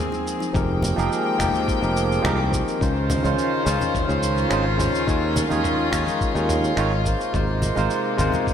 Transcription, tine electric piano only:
0.00 0.49 G#3 medium
0.00 0.50 D#4 medium
0.00 0.51 F4 medium
0.00 0.52 A#4 medium
0.00 0.53 C5 medium
0.53 0.93 F3 medium
0.53 0.94 C4 medium
0.53 0.94 D#4 medium
0.53 0.94 G4 medium
0.53 0.95 G#4 medium
0.53 0.95 A#4 medium
0.96 1.35 F3 medium
0.96 1.36 C4 medium
0.96 1.36 D#4 medium
0.96 1.37 G4 medium
0.96 1.37 G#4 medium
0.96 1.37 A#4 loud
1.38 1.78 F3 medium
1.38 1.79 C4 medium
1.38 1.79 D#4 medium
1.38 1.79 G4 medium
1.38 1.80 G#4 medium
1.38 1.80 A#4 loud
1.81 2.20 F3 medium
1.81 2.21 C4 medium
1.81 2.21 D#4 medium
1.81 2.21 G4 medium
1.81 2.22 G#4 medium
1.81 2.22 A#4 medium
2.23 2.37 F3 loud
2.23 2.37 C4 medium
2.23 2.38 D#4 medium
2.23 2.38 G4 medium
2.23 2.38 G#4 medium
2.23 2.39 A#4 loud
2.51 2.77 F3 medium
2.51 2.77 C4 medium
2.51 2.78 D#4 medium
2.51 2.78 G4 medium
2.51 2.78 G#4 medium
2.51 2.79 A#4 medium
2.79 3.20 C#3 medium
2.79 3.20 C#4 medium
2.79 3.21 D#4 medium
2.79 3.21 F4 medium
2.79 3.21 C5 medium
3.23 3.62 C#3 medium
3.23 3.63 C#4 medium
3.23 3.63 D#4 medium
3.23 3.63 F4 medium
3.23 3.64 C5 medium
3.64 4.04 C#3 medium
3.64 4.05 C#4 medium
3.64 4.05 D#4 medium
3.64 4.06 F4 medium
3.64 4.06 C5 loud
4.07 4.47 C#3 medium
4.07 4.47 C#4 medium
4.07 4.48 D#4 medium
4.07 4.48 F4 medium
4.07 4.49 C5 medium
4.49 4.63 C#3 loud
4.49 4.64 C#4 medium
4.49 4.64 D#4 medium
4.49 4.65 F4 medium
4.49 4.65 C5 loud
4.77 5.03 C#3 medium
4.77 5.04 C#4 medium
4.77 5.04 D#4 medium
4.77 5.04 F4 medium
4.77 5.05 C5 medium
5.06 5.46 D#3 medium
5.06 5.47 D#4 medium
5.06 5.47 F4 medium
5.06 5.48 G#4 medium
5.06 5.48 C#5 medium
5.49 5.88 D#3 medium
5.49 5.89 D#4 medium
5.49 5.89 F4 medium
5.49 5.90 G#4 medium
5.49 5.90 C#5 loud
5.90 6.31 D#3 medium
5.90 6.32 D#4 medium
5.90 6.32 F4 medium
5.90 6.32 G#4 medium
5.90 6.33 C#5 loud
6.34 6.73 D#3 medium
6.34 6.74 D#4 medium
6.34 6.74 F4 medium
6.34 6.75 G#4 medium
6.34 6.75 C#5 medium
6.76 6.90 D#3 medium
6.76 6.91 D#4 medium
6.76 6.91 F4 medium
6.76 6.92 G#4 medium
6.76 6.92 C#5 loud
7.04 7.30 G#3 medium
7.04 7.31 D#4 medium
7.04 7.31 F4 medium
7.04 7.31 A#4 medium
7.04 7.32 C5 medium
7.33 7.73 G#3 medium
7.33 7.73 D#4 medium
7.33 7.74 F4 medium
7.33 7.74 A#4 medium
7.33 7.75 C5 medium
7.75 8.15 G#3 medium
7.75 8.15 D#4 medium
7.75 8.16 F4 medium
7.75 8.16 A#4 medium
7.75 8.16 C5 loud
8.17 8.54 G#3 loud
8.17 8.54 D#4 medium
8.17 8.54 F4 medium
8.17 8.54 A#4 medium
8.21 8.54 C5 loud

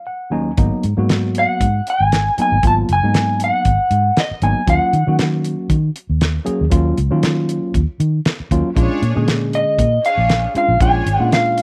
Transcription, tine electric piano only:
0.07 0.31 F#5 medium
0.31 0.50 D#2 medium
0.31 0.50 F#3 medium
0.31 0.50 A#3 medium
0.31 0.50 C#4 medium
0.31 0.51 D#4 medium
0.31 0.56 G#5 medium
0.57 0.84 F#3 medium
0.57 0.84 A#3 medium
0.57 0.84 B3 medium
0.57 0.84 D#4 medium
0.97 1.65 F#3 medium
0.97 1.65 A#3 medium
0.97 1.66 B3 medium
0.97 1.66 F#4 medium
2.38 2.55 F#3 medium
2.38 2.56 A#3 medium
2.38 2.56 B3 medium
2.38 2.56 D#4 medium
2.64 2.89 F#3 medium
2.64 2.89 A#3 medium
2.64 2.89 B3 medium
2.64 2.89 F4 medium
3.03 3.70 F#3 medium
3.03 3.71 A#3 medium
3.03 3.71 B3 medium
3.03 3.71 D#4 medium
4.42 4.60 F#3 medium
4.42 4.60 A#3 medium
4.42 4.60 B3 medium
4.42 4.60 D#4 medium
4.67 4.93 F#3 medium
4.67 4.93 A#3 medium
4.67 4.93 C#4 medium
4.67 4.94 F4 medium
5.07 5.74 F#3 medium
5.07 5.75 A#3 medium
5.07 5.75 C#4 medium
5.07 5.75 F#4 medium
6.45 6.64 F#3 medium
6.45 6.64 A#3 medium
6.45 6.64 C#4 medium
6.45 6.64 G#4 medium
6.70 6.97 F#3 medium
6.70 6.97 A#3 medium
6.70 6.97 C#4 medium
6.70 6.98 F4 medium
7.11 7.79 F#3 medium
7.11 7.79 A#3 medium
7.11 7.79 C#4 medium
7.11 7.79 F4 medium
8.51 8.69 F#3 medium
8.51 8.69 A#3 medium
8.51 8.69 C#4 medium
8.51 8.69 F4 medium
8.76 9.02 G#3 medium
8.76 9.02 C#4 medium
8.76 9.02 D4 medium
8.76 9.03 F4 medium
9.15 9.84 D3 medium
9.15 9.83 G#3 medium
9.15 9.84 C#4 medium
9.15 9.84 G#4 medium
10.55 10.73 G#3 medium
10.55 10.73 C#4 medium
10.55 10.73 D4 medium
10.55 10.74 F4 medium
10.80 11.06 G#3 medium
10.80 11.07 C#4 medium
10.80 11.07 D4 medium
10.80 11.07 F4 medium
11.19 11.62 G#3 medium
11.19 11.62 C#4 medium
11.19 11.62 D4 medium
11.19 11.62 F4 medium

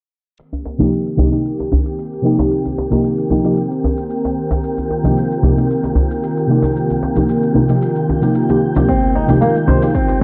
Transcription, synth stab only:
0.78 0.90 C3 medium
0.78 0.90 F3 medium
0.78 0.90 A#3 medium
0.78 0.91 D#4 medium
0.78 0.91 G4 medium
1.17 1.28 C3 medium
1.17 1.28 F3 medium
1.17 1.29 A#3 medium
1.17 1.29 D#4 medium
1.17 1.29 G4 medium
1.30 1.43 C3 medium
1.30 1.43 F3 medium
1.30 1.43 A#3 medium
1.30 1.43 D#4 medium
1.30 1.44 G4 medium
2.22 2.87 C3 medium
2.22 2.87 F3 medium
2.22 2.88 A#3 medium
2.22 2.88 D#4 medium
2.26 2.89 G4 medium
2.90 3.27 C3 medium
2.90 3.27 F3 medium
2.90 3.28 A#3 medium
2.90 3.28 D#4 medium
2.90 3.28 G4 medium
3.30 3.41 C3 medium
3.30 3.41 F3 medium
3.30 3.41 A#3 medium
3.30 3.42 D#4 medium
3.30 3.42 G4 medium
3.44 3.55 C3 medium
3.44 3.56 F3 medium
3.44 3.56 A#3 medium
3.44 3.56 D#4 medium
3.44 3.56 G4 medium
5.03 5.15 C3 medium
5.03 5.15 F3 medium
5.03 5.15 A#3 medium
5.03 5.15 D#4 medium
5.03 5.16 G4 medium
5.42 5.53 C3 medium
5.42 5.54 F3 medium
5.42 5.54 A#3 medium
5.42 5.54 D#4 medium
5.42 5.54 G4 loud
5.56 5.68 C3 medium
5.56 5.68 F3 medium
5.56 5.68 A#3 medium
5.56 5.68 D#4 medium
5.56 5.69 G4 medium
6.47 7.12 C3 medium
6.47 7.12 F3 medium
6.47 7.13 A#3 medium
6.47 7.13 D#4 medium
6.47 7.14 G4 medium
7.15 7.52 C3 medium
7.15 7.52 F3 medium
7.15 7.53 A#3 medium
7.15 7.53 D#4 medium
7.15 7.53 G4 medium
7.54 7.65 C3 medium
7.54 7.66 F3 medium
7.54 7.66 A#3 medium
7.54 7.66 D#4 medium
7.54 7.66 G4 medium
7.68 7.80 C3 medium
7.68 7.80 F3 medium
7.68 7.81 A#3 medium
7.68 7.81 D#4 medium
7.68 7.81 G4 medium
8.21 8.45 C3 medium
8.21 8.46 F3 medium
8.21 8.46 A#3 medium
8.21 8.46 D#4 medium
8.21 8.46 G4 medium
8.48 8.60 C3 medium
8.48 8.60 F3 medium
8.48 8.60 A#3 medium
8.48 8.61 D#4 medium
8.48 8.61 G4 medium
8.75 8.87 C3 medium
8.75 8.87 F3 medium
8.75 8.87 A#3 medium
8.75 8.87 D#4 medium
8.75 8.88 G4 medium
9.28 9.39 C3 medium
9.28 9.40 F3 medium
9.28 9.40 A#3 medium
9.28 9.40 D#4 medium
9.28 9.41 G4 medium
9.67 9.78 C3 medium
9.67 9.78 F3 medium
9.67 9.79 A#3 medium
9.67 9.79 D#4 medium
9.67 9.79 G4 medium
9.82 9.93 C3 medium
9.82 9.93 F3 medium
9.82 9.93 A#3 medium
9.82 9.94 D#4 medium
9.82 9.94 G4 medium

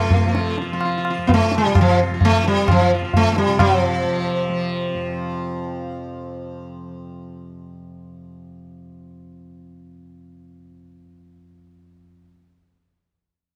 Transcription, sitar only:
0.00 0.56 A3 loud
0.00 0.12 F4 soft
0.14 0.26 F4 soft
0.27 0.36 F4 soft
0.38 0.49 F4 soft
0.51 0.60 F4 soft
0.62 0.72 F4 soft
0.73 0.84 F4 soft
0.85 0.96 F4 soft
0.97 1.09 F4 soft
1.10 1.29 F4 soft
1.27 1.30 B3 medium
1.34 1.55 A3 loud
1.44 1.64 F4 soft
1.58 1.79 G3 loud
1.66 1.86 F4 soft
1.81 2.00 F3 medium
1.91 2.02 F4 soft
2.03 2.13 F4 soft
2.14 2.33 F4 soft
2.25 2.47 A3 loud
2.48 2.70 G3 loud
2.71 2.91 F3 medium
2.81 2.93 F4 soft
2.95 3.03 F4 soft
3.05 3.25 F4 soft
3.17 3.31 A3 loud
3.32 3.37 A3 medium
3.38 3.59 G3 loud
3.49 3.70 F4 soft
3.60 3.80 F#3 loud
3.80 6.88 F3 loud

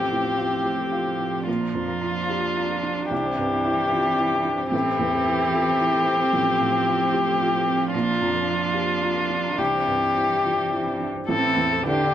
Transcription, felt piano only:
0.00 1.43 A1 soft
0.10 0.54 A2 soft
0.37 0.81 F4 soft
0.64 0.92 G4 soft
0.92 1.36 F4 soft
1.20 1.47 C4 soft
1.47 3.07 A#1 soft
1.74 2.18 F2 soft
2.02 2.45 F4 soft
2.29 2.56 G4 soft
2.56 3.00 F4 soft
2.83 3.11 D4 soft
3.11 4.68 C2 medium
3.38 3.81 G2 soft
3.65 4.08 E4 soft
3.91 4.18 F4 soft
4.19 4.62 E4 medium
4.44 4.72 D4 soft
4.71 6.29 A1 medium
4.99 5.42 E2 soft
5.26 5.69 E4 medium
5.52 5.80 F4 soft
5.79 6.22 E4 medium
6.06 6.33 C4 medium
6.33 7.89 A1 medium
6.61 7.02 A2 soft
6.87 7.29 F4 medium
7.13 7.40 G4 soft
7.40 7.83 F4 medium
7.67 7.94 C4 soft
7.94 9.55 A#1 medium
8.21 8.64 F2 soft
8.48 8.92 F4 soft
8.74 9.02 G4 soft
9.02 9.47 F4 soft
9.30 9.58 D4 soft
9.58 11.25 C2 soft
9.87 10.33 G2 soft
10.15 10.61 E4 soft
10.43 10.72 F4 soft
10.71 11.18 E4 soft
11.00 11.29 D4 soft
11.28 12.14 A1 medium
11.56 12.01 E2 soft
11.84 12.14 E4 medium

